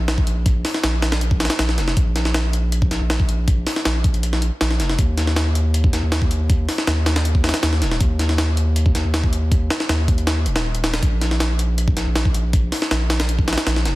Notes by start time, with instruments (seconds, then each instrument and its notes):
0.00 sub bass A#1
0.08 snare, closed hi-hat
0.18 kick
0.27 closed hi-hat
0.46 kick, closed hi-hat
0.65 snare, open hi-hat
0.74 snare
0.84 sub bass A#1, snare, closed hi-hat
1.02 snare, closed hi-hat
1.12 snare, closed hi-hat
1.21 closed hi-hat
1.31 kick
1.40 snare, closed hi-hat
1.45 snare, closed hi-hat
1.50 snare, closed hi-hat
1.59 sub bass A#1, snare, closed hi-hat
1.69 snare
1.78 sub bass F1, snare, closed hi-hat
1.88 snare
1.97 sub bass A#1, kick, closed hi-hat
2.16 snare, closed hi-hat
2.25 snare
2.34 snare, closed hi-hat
2.53 closed hi-hat
2.72 closed hi-hat
2.82 kick
2.91 sub bass A#1, snare, closed hi-hat
3.01 sub bass A#1
3.10 snare, closed hi-hat
3.20 kick
3.29 closed hi-hat
3.48 kick, closed hi-hat
3.67 snare, open hi-hat
3.76 snare
3.85 sub bass A#1, snare, closed hi-hat
4.04 kick, closed hi-hat
4.14 closed hi-hat
4.23 closed hi-hat
4.33 snare
4.42 closed hi-hat
4.61 sub bass A#1, snare, closed hi-hat
4.71 snare
4.80 sub bass F1, snare, closed hi-hat
4.90 snare
4.99 sub bass D#2, kick, closed hi-hat
5.18 snare, closed hi-hat
5.27 snare
5.36 snare, closed hi-hat
5.55 closed hi-hat
5.74 closed hi-hat
5.84 kick
5.93 sub bass D#2, snare, closed hi-hat
6.03 sub bass D#2
6.12 snare, closed hi-hat
6.22 kick
6.31 closed hi-hat
6.50 kick, closed hi-hat
6.69 snare, open hi-hat
6.78 snare
6.87 sub bass D#2, snare, closed hi-hat
7.06 snare, closed hi-hat
7.16 snare, closed hi-hat
7.25 closed hi-hat
7.35 kick
7.44 snare, closed hi-hat
7.49 snare, closed hi-hat
7.54 snare, closed hi-hat
7.63 sub bass D#2, snare, closed hi-hat
7.73 snare
7.82 sub bass D#1, snare, closed hi-hat
7.91 snare
8.01 sub bass D#2, kick, closed hi-hat
8.19 snare, closed hi-hat
8.29 snare
8.38 snare, closed hi-hat
8.57 closed hi-hat
8.76 closed hi-hat
8.86 kick
8.95 sub bass D#2, snare, closed hi-hat
9.05 sub bass D#2
9.14 snare, closed hi-hat
9.24 kick
9.33 closed hi-hat
9.52 kick, closed hi-hat
9.70 snare, closed hi-hat
9.80 snare
9.89 sub bass D#2, snare, closed hi-hat
10.08 kick, closed hi-hat
10.18 closed hi-hat
10.27 snare, closed hi-hat
10.46 sub bass D#1, closed hi-hat
10.56 snare, closed hi-hat
10.75 closed hi-hat
10.84 snare, closed hi-hat
10.94 snare, closed hi-hat
11.03 sub bass A#1, kick, closed hi-hat
11.21 snare, closed hi-hat
11.31 snare
11.40 snare, closed hi-hat
11.59 closed hi-hat
11.78 closed hi-hat
11.88 kick
11.97 sub bass A#1, snare, closed hi-hat
12.07 sub bass A#1
12.16 snare, closed hi-hat
12.25 kick
12.34 closed hi-hat
12.53 kick, closed hi-hat
12.72 snare, open hi-hat
12.82 snare
12.91 sub bass A#1, snare, closed hi-hat
13.10 snare, closed hi-hat
13.20 snare, closed hi-hat
13.29 closed hi-hat
13.39 kick
13.48 snare, closed hi-hat
13.53 snare, closed hi-hat
13.58 snare, closed hi-hat
13.67 sub bass A#1, snare, closed hi-hat
13.76 snare
13.85 sub bass F1, snare, closed hi-hat